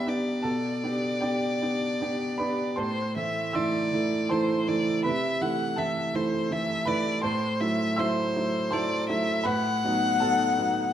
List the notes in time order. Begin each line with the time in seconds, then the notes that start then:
Already playing: G2 B3 D4 G4 B4 D5 G5 B5 D6
0.06 B3 D4 G4 D5
0.43 B2 A4 A5
0.84 B3 D4 G4
1.21 B3 D4 G4 D5 G5
1.62 B3 D4 G4
2.01 B3 D4 G4
2.38 B3 D4 G4 B4 B5
2.76 A2 C5 A5 C6
3.16 E3 A3 E4 E5
3.53 E3 A3 E4 D5 E5 C6 E6
3.93 E3 A3 E4
4.29 E3 A3 E4 C5 A5 C6
4.68 E3 A3 E4 D5
5.03 C3 B4 E5 B5
5.41 E3 A3 E4 F#5
5.76 E3 A3 E4 A4 E5 A5
6.14 E3 A3 E4 C5
6.51 E3 A3 E4 E5
6.85 E3 A3 E4 B4 D5 B5
7.22 A2 C5 A5 C6
7.60 F#3 A3 E4 E5
7.96 F#3 A3 E4 C5 E5 C6 E6
8.36 F#3 A3 E4
8.71 F#3 A3 E4 C5 D5 A5 C6
9.09 F#3 A3 E4 E5
9.44 A2 B4 F#5 B5
9.84 F#3 B3 D#4
10.20 F#3 B3 D#4 A4 F#5 A5
10.58 F#3 B3 D#4